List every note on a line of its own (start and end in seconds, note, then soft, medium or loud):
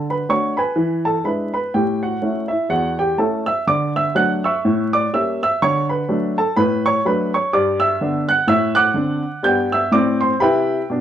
0.00 0.22 D3 medium
0.10 0.29 B4 medium
0.10 0.27 B5 medium
0.29 0.56 A3 soft
0.29 0.56 D4 soft
0.29 0.56 F#4 soft
0.29 0.56 C#5 medium
0.29 0.53 C#6 medium
0.57 1.03 B4 medium
0.57 1.03 G#5 medium
0.57 0.98 B5 medium
0.76 1.18 E3 medium
1.05 1.25 A4 medium
1.05 1.23 A5 medium
1.24 1.51 G#3 soft
1.24 1.52 D4 soft
1.24 1.52 E4 soft
1.24 1.53 B4 soft
1.24 1.49 B5 medium
1.54 1.73 B4 soft
1.54 1.71 B5 medium
1.74 2.16 A2 medium
1.74 2.01 G4 soft
1.74 1.98 G5 medium
2.03 2.48 F#4 medium
2.03 2.44 F#5 medium
2.22 2.49 A3 soft
2.22 2.49 C#4 soft
2.22 2.49 E4 soft
2.48 2.70 E4 medium
2.48 2.67 E5 medium
2.69 3.11 E2 medium
2.69 2.97 F#4 medium
2.69 2.94 F#5 medium
2.99 3.18 G4 medium
2.99 3.16 G5 medium
3.18 3.45 A3 soft
3.18 3.45 C#4 soft
3.18 3.46 E4 soft
3.18 3.46 A4 medium
3.18 3.43 A5 medium
3.46 3.67 E5 medium
3.46 3.64 E6 medium
3.67 4.09 D3 medium
3.67 3.95 D5 medium
3.67 3.92 D6 medium
3.96 4.15 E5 medium
3.96 4.13 E6 medium
4.15 4.42 F#3 soft
4.15 4.42 A3 soft
4.15 4.43 D4 soft
4.15 4.42 F#5 medium
4.15 4.40 F#6 medium
4.44 4.90 E5 medium
4.44 4.90 C#6 medium
4.44 4.85 E6 medium
4.65 5.06 A2 medium
4.93 5.13 D5 medium
4.93 5.10 D6 medium
5.13 5.40 G3 soft
5.13 5.40 A#3 soft
5.13 5.40 C#4 soft
5.13 5.40 E5 medium
5.13 5.37 E6 medium
5.43 5.61 E5 medium
5.43 5.59 E6 medium
5.62 6.03 D3 medium
5.62 5.89 C#5 medium
5.62 5.85 C#6 medium
5.89 6.35 B4 medium
5.89 6.30 B5 medium
6.09 6.36 F#3 soft
6.09 6.35 A3 soft
6.09 6.36 D4 medium
6.38 6.57 A4 medium
6.38 6.55 A5 medium
6.56 6.98 A2 medium
6.56 6.84 B4 medium
6.56 6.81 B5 medium
6.86 7.05 C#5 medium
6.86 7.03 C#6 medium
7.05 7.32 F#3 soft
7.05 7.33 A3 soft
7.05 7.33 D4 soft
7.05 7.32 B4 medium
7.05 7.30 B5 medium
7.34 7.53 C#5 soft
7.34 7.51 C#6 medium
7.53 7.94 G2 medium
7.53 7.80 D5 medium
7.53 7.77 D6 medium
7.80 8.26 E5 medium
7.80 8.21 E6 medium
8.01 8.28 D3 soft
8.01 8.28 B3 soft
8.01 8.28 D4 medium
8.29 8.49 F#5 medium
8.29 8.46 F#6 medium
8.47 8.89 A2 medium
8.47 8.76 E5 medium
8.47 8.73 E6 loud
8.75 9.41 F#5 medium
8.75 9.41 D6 medium
8.75 9.34 F#6 loud
8.94 9.22 D3 soft
8.94 9.22 C4 soft
8.94 9.23 D4 medium
9.43 9.83 G2 medium
9.43 9.84 B3 medium
9.43 9.72 G5 medium
9.43 9.69 G6 medium
9.72 9.93 E5 medium
9.72 9.90 E6 medium
9.92 10.31 A2 medium
9.92 10.33 C4 medium
9.92 10.20 D5 medium
9.92 10.17 D6 medium
10.21 10.41 C5 medium
10.21 10.38 C6 medium
10.40 10.79 C3 medium
10.40 10.81 E4 medium
10.40 10.87 B4 medium
10.40 10.87 G5 medium
10.40 10.82 B5 medium
10.90 11.01 B2 medium
10.90 11.01 D4 medium